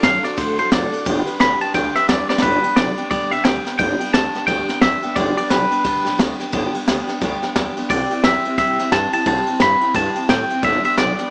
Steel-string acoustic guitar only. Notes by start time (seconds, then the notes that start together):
0.02 A3 D4 F#4 A4
0.23 D4 F#4 A4
0.37 D3 A3 D4 F#4 A4
0.58 D4 F#4 A4
0.71 A3 D4 F#4 A4
0.92 D4 F#4 A4
1.05 G2 D3 G3 D4 G4 B4
1.26 G3 D4 G4 B4
1.39 G3 D4 G4 B4
1.61 G3 D4 G4 B4
1.74 G2 D3 G3 D4 G4 B4
1.95 G3 D4 G4 B4
2.08 G3 D4 G4 B4
2.29 G3 D4 G4 B4
2.42 G2 D3 G3 B3 D4 G4
2.63 G3 B3 D4 G4
2.77 G3 B3 D4 G4
2.98 G3 B3 D4 G4
3.10 G2 D3 G3 B3 D4 G4
3.31 G3 B3 D4 G4
3.44 G3 B3 D4 G4
3.65 G3 B3 D4 G4
3.78 G2 D3 G3 B3 D4 G4
3.99 G3 B3 D4 G4
4.13 G3 B3 D4 G4
4.34 G3 B3 D4 G4
4.47 G2 D3 G3 B3 D4 G4
4.68 G3 B3 D4 G4
4.81 G3 B3 G4
5.03 G3 B3 D4 G4
5.16 G2 D3 G3 B3 D4 G4
5.37 G3 B3 D4 G4
5.50 G3 B3 D4 G4
5.71 G3 B3 D4 G4
5.84 G2 D3 G3 B3 D4 G4
6.05 G3 B3 D4 G4
6.18 G3 B3 D4 G4
6.39 G3 B3 D4 G4
6.52 G2 D3 G3 B3 D4 G4
6.73 G3 B3 D4 G4
6.87 G3 B3 D4 G4
7.08 G3 B3 D4 G4
7.21 G2 D3 G3 B3 D4 G4
7.42 G3 B3 D4 G4
7.55 G3 B3 D4 G4
7.77 G3 B3 D4 G4
7.90 C3 G3 C4 E4 G4
8.11 C4 E4 G4
8.24 G3 C4 E4 G4
8.45 C4 E4 G4
8.58 C3 G3 C4 E4 G4
8.79 C4 E4 G4
8.92 G3 C4 E4 G4
9.13 C4 E4 G4
9.26 C3 G3 C4 E4 G4
9.47 C4 E4 G4
9.60 G3 C4 E4 G4
9.81 C4 E4 G4
9.95 C3 G3 C4 E4 G4
10.15 C4 E4 G4
10.29 G3 C4 E4 G4
10.50 C4 E4 G4
10.63 G2 D3 G3 B3 D4 G4
10.84 G3 B3 D4 G4
10.97 G3 B3 D4 G4
11.19 G3 B3 D4 G4